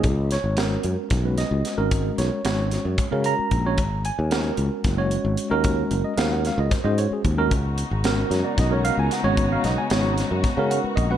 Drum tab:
HH |xxxxxxx|xxxxxxx|xxxxxxx|xxxxxxx|
SD |-oo-ooo|-ooo---|--o-o--|--ooo--|
BD |o---o--|o---o-o|o---o--|o---o-o|

HH |xxxxxxx|xxxxxxx|
SD |--ooo-o|-oooo--|
BD |o---o--|o---o-o|